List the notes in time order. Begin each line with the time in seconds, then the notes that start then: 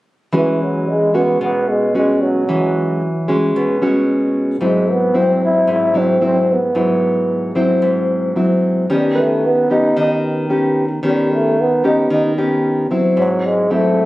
0.33 E3 G#3 C#4 F#4
0.63 F#3
0.88 G#3
1.14 G#3 B3 C#4 F#4
1.41 B2 B3
1.69 G#3
1.94 G#3 C#4 F#4
2.23 F#3
2.48 E3 G#3 C#4 F#4
3.28 G#3 C#4 F#4
3.56 B2
3.82 G#3 C#4 F#4
4.61 G#2 F#3 G#3 C4 E4
4.91 B3
5.14 F#3 C4 E4
5.44 E4
5.67 G#2
5.72 E4
5.94 F#3 C4 E4
6.21 F#3 C4 E4
6.25 C4
6.51 B3
6.75 G#2 F#3 E4
7.55 F#3 C4 E4
7.82 G#2
8.36 F#3 C4 E4
8.90 D#3 G3 B3 C#4 G4
9.16 A3 B4
9.46 B3
9.70 B3 C#4 D#4 G4
9.97 D#3 D#4
10.49 B3 C#4 G4
11.03 D#3 G3 B3 C#4 G4
11.34 A3
11.61 B3
11.84 B3 C#4 D#4 G4
12.10 D#3 D#4
12.38 B3 C#4 G4
12.91 F#3 C4 E4
13.17 G#2 F#3
13.46 G#3
13.70 F#3 A3 C4 E4